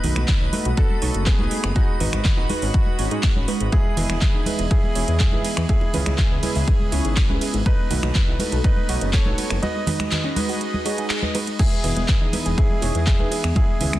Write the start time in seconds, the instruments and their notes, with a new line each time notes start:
Already playing: analog synth pad A3 B3 D#5, grand piano D#4 B4, supersaw synth B4, synth texture B5
0.04 detuned saw bass B1, synth stab A3 D#4 F#4 B4, synth pluck D#4, open hi-hat, low conga
0.16 detuned saw bass B1, synth pluck B3, finger snap, closed hi-hat, high bongo, high conga
0.28 synth pluck B3, kick, clap, closed hi-hat, low conga
0.41 detuned saw bass B1, synth pluck C#4
0.53 synth stab A3 D#4 F#4 B4, synth pluck B3, open hi-hat, high conga
0.65 detuned saw bass B1, synth pluck F#4, closed hi-hat
0.77 synth pluck B3, grand piano F#4 A4, supersaw synth A4, kick, closed hi-hat, high bongo
0.90 synth pluck B3, high conga
1.02 detuned saw bass B1, synth stab A3 D#4 F#4 C#5, synth pluck D#4, open hi-hat
1.14 detuned saw bass F#1, synth pluck B3, closed hi-hat
1.26 grand piano B3 G#4, synth pluck B3, supersaw synth G#4, kick, clap, closed hi-hat, high bongo
1.39 detuned saw bass B1, synth stab A3 D#4 F#4 B4, synth pluck F#4, high conga
1.51 synth stab A3 D#4 F#4 B4, synth pluck B3, open hi-hat
1.64 detuned saw bass F#1, synth pluck B3, finger snap, closed hi-hat
1.75 analog synth pad G#3 F#4 B4, grand piano D#4 F#4, supersaw synth F#4, synth pluck G#4, kick, closed hi-hat, high conga
1.88 synth pluck G#3, high bongo
2.00 detuned saw bass G#1, synth stab G#3 D#4 F#4 B4, synth pluck D#4, open hi-hat, low conga
2.13 detuned saw bass G#1, synth pluck G#3, finger snap, closed hi-hat, high conga
2.25 kick, clap, closed hi-hat, low conga
2.37 detuned saw bass G#1, synth pluck D#4, high bongo
2.49 synth stab G#3 D#4 F#4 B4, synth pluck G#3, open hi-hat, high conga
2.62 detuned saw bass G#1, synth pluck C#4, open hi-hat
2.74 synth pluck G#3, kick, closed hi-hat
2.86 synth pluck G#3, high conga
2.99 detuned saw bass G#1, synth stab G#3 D#4 F#4 C#5, synth pluck C#4, open hi-hat, high bongo
3.11 detuned saw bass G#2, synth stab G#3 D#4 F#4 G#4, synth pluck G#3, closed hi-hat
3.23 finger snap, kick, clap, closed hi-hat
3.36 detuned saw bass G#1, synth pluck C#4, high conga
3.48 synth stab G#3 D#4 F#4 B4, synth pluck G#3, open hi-hat, high bongo
3.60 detuned saw bass G#1, synth pluck G#3, closed hi-hat
3.72 analog synth pad E3 B3 G#4, grand piano E4 G#4, supersaw synth G#4, synth pluck G#4, kick, closed hi-hat, high conga
3.85 synth pluck B3
3.97 detuned saw bass E1, synth stab G#3 E4 B4 D#5, synth pluck E4, open hi-hat, ride, low conga
4.10 detuned saw bass E1, synth pluck B3, finger snap, closed hi-hat, high conga
4.21 synth pluck B3, kick, clap, closed hi-hat, high bongo, low conga
4.34 detuned saw bass E1, synth pluck D#4
4.46 synth stab G#3 D#4 E4 B4, synth pluck B3, open hi-hat, ride, high conga
4.59 detuned saw bass E1, synth pluck G#4, closed hi-hat
4.71 synth pluck B3, grand piano E4 G#4, supersaw synth G#4, kick, closed hi-hat, high bongo
4.83 synth pluck B3, high conga
4.95 detuned saw bass E1, synth stab G#3 D#4 E4 C#5, synth pluck E4, open hi-hat, ride
5.08 detuned saw bass E2, synth pluck B3, closed hi-hat
5.20 grand piano E4 G#4, supersaw synth G#4, kick, clap, closed hi-hat
5.32 detuned saw bass E1, synth stab G#3 D#4 E4 B4, synth pluck G#4, high bongo, high conga
5.44 synth stab G#3 D#4 E4 B4, synth pluck B3, open hi-hat, ride
5.57 detuned saw bass E2, synth pluck B3, finger snap, closed hi-hat
5.69 analog synth pad C#3 G#3 E4, grand piano E4 G#4, synth pluck E4, supersaw synth G#4, kick, closed hi-hat, high conga
5.81 synth pluck G#3, high bongo
5.93 detuned saw bass C#2, synth stab G#3 C#4 E4 B4, synth pluck C#4, open hi-hat, ride, low conga
6.06 detuned saw bass C#2, synth pluck G#3, finger snap, closed hi-hat, high conga
6.18 synth pluck G#3, kick, clap, closed hi-hat, low conga
6.31 detuned saw bass C#2, synth pluck B3
6.43 synth stab G#3 C#4 E4 B4, synth pluck G#3, open hi-hat, ride, high bongo, high conga
6.55 detuned saw bass C#2, synth pluck E4, open hi-hat
6.68 synth pluck G#3, kick, closed hi-hat
6.80 synth pluck G#3, high conga
6.92 detuned saw bass C#2, synth stab G#3 C#4 E4 C#5, synth pluck C#4, open hi-hat, ride, high bongo
7.05 detuned saw bass G#1, synth pluck G#3, closed hi-hat
7.17 synth pluck G#3, finger snap, kick, clap, closed hi-hat
7.29 detuned saw bass C#2, synth stab G#3 C#4 E4 B4, synth pluck E4, high conga
7.41 synth stab G#3 C#4 E4 B4, synth pluck G#3, open hi-hat, ride
7.54 detuned saw bass G#1, synth pluck G#3, closed hi-hat, high bongo
7.66 analog synth pad A3 D#4, grand piano D#4 B4, synth pluck A4, supersaw synth B4, kick, closed hi-hat, high conga
7.79 synth pluck B3
7.90 detuned saw bass B1, synth stab A3 D#4 F#4 B4, synth pluck F#4, open hi-hat, ride, low conga
8.02 detuned saw bass B1, synth pluck B3, finger snap, closed hi-hat, high bongo, high conga
8.15 synth pluck B3, kick, clap, closed hi-hat, low conga
8.27 detuned saw bass B1, synth pluck E4
8.39 synth stab A3 D#4 F#4 B4, synth pluck B3, open hi-hat, ride, high conga
8.52 detuned saw bass B1, synth pluck A4, closed hi-hat
8.64 synth pluck B3, grand piano D#4 B4, supersaw synth B4, kick, closed hi-hat, high bongo
8.77 synth pluck B3, high conga
8.89 detuned saw bass B1, synth stab A3 D#4 F#4 C#5, synth pluck F#4, open hi-hat, ride
9.01 detuned saw bass F#1, synth pluck B3, closed hi-hat
9.13 synth pluck B3, grand piano A4 C#5, supersaw synth C#5, kick, clap, closed hi-hat, high bongo
9.25 detuned saw bass B1, synth stab A3 D#4 F#4 B4, synth pluck A4, high conga
9.38 synth stab A3 D#4 F#4 B4, synth pluck B3, open hi-hat, ride
9.50 detuned saw bass F#1, synth pluck B3, finger snap, closed hi-hat
9.62 analog synth pad G#3 F#4 B4, synth pluck F#4, grand piano B4 D#5, supersaw synth D#5, closed hi-hat, high conga
9.75 synth pluck G#3, high bongo
9.87 synth stab G#3 D#4 F#4 B4, synth pluck D#4, open hi-hat, ride, low conga
10.00 synth pluck G#3, finger snap, closed hi-hat, high conga
10.11 synth pluck G#3, clap, closed hi-hat, low conga
10.24 synth pluck C#4, high bongo
10.36 synth stab G#3 D#4 F#4 B4, synth pluck G#3, open hi-hat, ride, high conga
10.49 synth pluck F#4, open hi-hat
10.61 synth pluck G#3, closed hi-hat
10.74 synth pluck G#3, high conga
10.85 synth stab G#3 D#4 F#4 C#5, synth pluck G#4, open hi-hat, ride, high bongo
10.98 synth stab G#3 D#4 F#4 G#4, synth pluck G#3, closed hi-hat
11.10 synth pluck G#3, finger snap, clap, closed hi-hat
11.22 synth pluck B4, high conga
11.35 synth stab G#3 D#4 F#4 B4, synth pluck G#3, open hi-hat, ride, high bongo
11.47 synth pluck G#3, closed hi-hat
11.59 analog synth pad E3 B3 G#4 D#5, grand piano E4 G#4, synth pluck G#4, supersaw synth G#4, kick, closed hi-hat, crash, high conga
11.72 synth pluck B3
11.84 detuned saw bass E1, synth stab G#3 E4 B4 D#5, synth pluck E4, open hi-hat, ride, low conga
11.96 detuned saw bass E1, synth pluck B3, closed hi-hat, high conga
12.08 synth pluck B3, kick, clap, closed hi-hat, low conga
12.21 detuned saw bass E1, synth pluck D#4
12.33 synth stab G#3 D#4 E4 B4, synth pluck B3, open hi-hat, ride, high conga
12.46 detuned saw bass E1, synth pluck G#4, closed hi-hat
12.58 synth pluck B3, grand piano E4 G#4, supersaw synth G#4, kick, closed hi-hat
12.70 synth pluck B3, high conga
12.82 detuned saw bass E1, synth stab G#3 D#4 E4 C#5, synth pluck E4, open hi-hat, ride, high bongo
12.95 detuned saw bass E2, synth pluck B3, closed hi-hat
13.07 synth pluck B3, grand piano E4 G#4, supersaw synth G#4, kick, clap, closed hi-hat
13.19 detuned saw bass E1, synth stab G#3 D#4 E4 B4, synth pluck G#4, high conga
13.31 synth stab G#3 D#4 E4 B4, synth pluck B3, open hi-hat, ride, high bongo
13.44 detuned saw bass E2, synth pluck B3, finger snap, closed hi-hat
13.55 analog synth pad C#3 G#3 E4, synth pluck E4, grand piano E4 G#4, supersaw synth G#4, kick, closed hi-hat, high conga
13.69 synth pluck G#3
13.80 detuned saw bass C#2, synth stab G#3 C#4 E4 B4, synth pluck C#4, open hi-hat, ride, low conga
13.93 detuned saw bass C#2, synth pluck G#3, finger snap, closed hi-hat, high conga